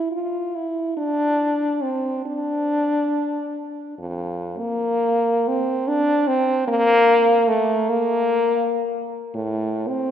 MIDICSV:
0, 0, Header, 1, 2, 480
1, 0, Start_track
1, 0, Tempo, 870827
1, 539, Time_signature, 6, 3, 24, 8
1, 1499, Tempo, 1255230
1, 1979, Tempo, 1094891
1, 2459, Tempo, 814111
1, 4379, Tempo, 1023891
1, 5215, End_track
2, 0, Start_track
2, 0, Title_t, "French horn"
2, 0, Program_c, 0, 60
2, 61, Note_on_c, 0, 65, 79
2, 303, Note_on_c, 0, 64, 82
2, 311, Note_off_c, 0, 65, 0
2, 532, Note_off_c, 0, 64, 0
2, 535, Note_on_c, 0, 62, 96
2, 1006, Note_on_c, 0, 60, 81
2, 1014, Note_off_c, 0, 62, 0
2, 1238, Note_off_c, 0, 60, 0
2, 1242, Note_on_c, 0, 62, 97
2, 1965, Note_off_c, 0, 62, 0
2, 1983, Note_on_c, 0, 41, 83
2, 2246, Note_on_c, 0, 58, 99
2, 2252, Note_off_c, 0, 41, 0
2, 2701, Note_on_c, 0, 60, 95
2, 2710, Note_off_c, 0, 58, 0
2, 2935, Note_on_c, 0, 62, 110
2, 2944, Note_off_c, 0, 60, 0
2, 3170, Note_on_c, 0, 60, 110
2, 3179, Note_off_c, 0, 62, 0
2, 3405, Note_off_c, 0, 60, 0
2, 3408, Note_on_c, 0, 58, 127
2, 3879, Note_on_c, 0, 57, 107
2, 3888, Note_off_c, 0, 58, 0
2, 4122, Note_on_c, 0, 58, 114
2, 4130, Note_off_c, 0, 57, 0
2, 4695, Note_off_c, 0, 58, 0
2, 4857, Note_on_c, 0, 45, 98
2, 5106, Note_on_c, 0, 60, 106
2, 5113, Note_off_c, 0, 45, 0
2, 5215, Note_off_c, 0, 60, 0
2, 5215, End_track
0, 0, End_of_file